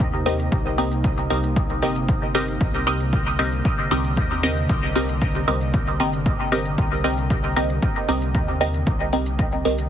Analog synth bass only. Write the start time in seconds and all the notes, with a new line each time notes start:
0.00 D#2
0.52 C2
1.30 C2
1.83 G1
2.61 C2
3.91 C2
4.17 D#2
4.69 C2
5.48 C2
6.00 G1
6.78 C2
8.09 C2
8.35 D#2
8.87 C2
9.65 C2